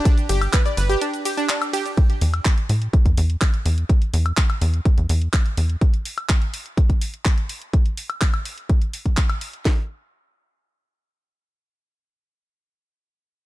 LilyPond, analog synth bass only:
\new Staff \with { instrumentName = "Analog synth bass" } { \clef bass \time 4/4 \key g \major \tempo 4 = 125 r8 g,,8 r8 g,,8 r2 | r8 e,8 r8 a,8 r16 e,16 e,8 r8 e,8 | r8 e,8 r8 e,8 r16 e,16 e,8 r8 e,8 | r1 |
r1 | r1 | r1 | }